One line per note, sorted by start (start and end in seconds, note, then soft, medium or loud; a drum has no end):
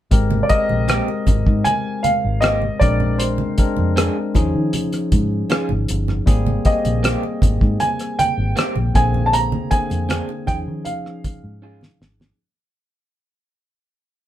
0.11 0.42 G#1 medium
0.11 0.41 G#3 medium
0.11 0.42 C4 medium
0.11 0.42 G4 medium
0.11 0.42 A#4 medium
0.11 kick medium
0.11 closed hi-hat medium
0.31 muted conga soft
0.31 high conga medium
0.43 0.50 D5 medium
0.49 1.69 G#3 medium
0.49 1.69 C4 medium
0.49 1.70 G4 medium
0.49 1.70 A#4 medium
0.49 1.69 D#5 loud
0.49 kick medium
0.49 closed hi-hat medium
0.69 1.00 A#1 medium
0.69 high conga medium
0.88 1.08 A#3 medium
0.88 1.08 C4 medium
0.88 1.08 G4 medium
0.88 cross-stick medium
0.88 closed hi-hat medium
0.88 muted conga soft
1.08 muted conga soft
1.27 1.42 G#1 medium
1.27 kick medium
1.27 closed hi-hat medium
1.27 high conga soft
1.27 low conga medium
1.47 1.62 G#2 medium
1.47 kick medium
1.64 2.05 G#5 medium
1.64 closed hi-hat medium
1.64 muted conga soft
1.64 high conga medium
2.03 2.43 F5 medium
2.03 muted fingered electric bass stroke soft
2.03 closed hi-hat medium
2.03 high conga medium
2.25 2.69 G#1 medium
2.41 2.62 A#3 medium
2.41 2.62 C4 medium
2.41 2.62 G4 medium
2.41 2.82 D#5 medium
2.41 cross-stick medium
2.41 closed hi-hat medium
2.61 high conga soft
2.79 3.41 A#1 medium
2.79 3.43 G#3 medium
2.79 3.43 C4 medium
2.79 3.43 D4 medium
2.79 3.44 A#4 medium
2.79 3.20 D5 medium
2.79 kick medium
2.79 closed hi-hat medium
3.00 low conga medium
3.18 5.84 C5 medium
3.18 closed hi-hat medium
3.38 high conga medium
3.58 4.35 G#3 medium
3.58 4.35 C4 medium
3.58 4.36 D4 medium
3.58 4.36 A#4 medium
3.58 kick medium
3.58 closed hi-hat medium
3.77 4.08 F2 medium
3.77 high conga medium
3.96 4.16 C4 medium
3.96 4.16 D4 medium
3.96 4.16 G#4 medium
3.96 cross-stick loud
3.96 closed hi-hat medium
4.35 4.50 D#2 medium
4.35 5.58 F3 medium
4.35 5.58 C#4 medium
4.35 5.58 D#4 medium
4.35 5.59 G#4 medium
4.35 kick medium
4.35 closed hi-hat medium
4.35 high conga soft
4.35 low conga medium
4.55 4.70 D#3 medium
4.73 closed hi-hat medium
4.73 high conga medium
4.93 cross-stick soft
4.93 closed hi-hat soft
4.93 muted conga soft
5.12 5.42 G#2 medium
5.12 kick medium
5.12 closed hi-hat medium
5.12 high conga medium
5.50 5.69 C#4 medium
5.50 5.69 F4 medium
5.50 5.70 G#4 medium
5.50 cross-stick medium
5.50 closed hi-hat medium
5.50 muted conga soft
5.69 5.85 G#1 medium
5.69 muted conga soft
5.69 high conga soft
5.88 6.19 G1 medium
5.88 closed hi-hat medium
6.08 cross-stick soft
6.08 low conga medium
6.26 6.57 G#1 medium
6.26 6.56 G3 medium
6.26 6.56 A#3 medium
6.26 6.57 C4 medium
6.26 6.57 G#4 medium
6.26 kick medium
6.26 closed hi-hat medium
6.26 muted conga soft
6.46 muted conga soft
6.46 high conga medium
6.65 7.84 A#3 medium
6.65 7.84 C4 medium
6.65 7.83 G4 medium
6.65 7.84 G#4 medium
6.65 7.84 D#5 medium
6.65 kick medium
6.65 closed hi-hat medium
6.85 7.15 A#1 medium
6.85 closed hi-hat soft
6.85 high conga medium
7.03 7.22 A#3 medium
7.03 7.23 C4 medium
7.03 7.23 G4 medium
7.03 cross-stick medium
7.03 closed hi-hat medium
7.23 muted conga soft
7.42 7.57 G#1 medium
7.42 kick medium
7.42 closed hi-hat medium
7.42 high conga soft
7.42 low conga medium
7.61 7.76 G#2 medium
7.61 kick medium
7.80 8.20 G#5 medium
7.80 closed hi-hat medium
7.80 high conga medium
7.99 cross-stick soft
7.99 closed hi-hat soft
8.19 8.97 G5 medium
8.19 muted fingered electric bass stroke soft
8.19 closed hi-hat medium
8.19 high conga medium
8.38 8.52 G#1 medium
8.56 8.75 A#3 medium
8.56 8.75 C4 medium
8.56 8.76 G4 medium
8.56 cross-stick medium
8.56 closed hi-hat medium
8.76 8.91 A#1 medium
8.76 muted conga soft
8.76 high conga soft
8.94 9.54 A#1 medium
8.94 9.56 D3 medium
8.94 9.56 A#3 medium
8.94 9.56 C4 medium
8.94 9.56 G#4 medium
8.94 9.27 G#5 medium
8.94 kick medium
8.94 closed hi-hat medium
9.14 low conga medium
9.26 9.33 A5 medium
9.33 9.73 A#5 medium
9.33 closed hi-hat medium
9.52 muted conga soft
9.52 high conga medium
9.71 10.47 D3 medium
9.71 10.47 A#3 medium
9.71 10.48 C4 medium
9.71 10.47 G#4 medium
9.71 10.50 G#5 medium
9.71 kick medium
9.71 closed hi-hat medium
9.90 10.20 F2 medium
9.90 closed hi-hat soft
9.90 high conga medium
10.09 10.28 C4 medium
10.09 10.28 D4 medium
10.09 10.29 G#4 medium
10.09 cross-stick medium
10.09 closed hi-hat medium
10.09 muted conga soft
10.29 muted conga soft
10.47 10.63 D#2 medium
10.47 11.69 F3 medium
10.47 11.69 C#4 medium
10.47 11.70 D#4 medium
10.47 11.70 G#4 medium
10.47 10.56 G5 medium
10.47 kick medium
10.47 closed hi-hat medium
10.47 high conga soft
10.47 low conga medium
10.68 10.82 D#3 medium
10.85 11.96 F5 medium
10.85 closed hi-hat medium
10.85 high conga medium
11.06 cross-stick soft
11.24 muted fingered electric bass stroke soft
11.24 kick medium
11.24 closed hi-hat medium
11.24 high conga medium
11.44 11.88 G#2 medium
11.62 11.81 C#4 medium
11.62 11.81 F4 medium
11.62 11.82 G#4 medium
11.81 snare medium
11.81 high conga soft
12.01 12.30 G#1 medium
12.01 snare medium
12.20 snare medium
12.20 low conga medium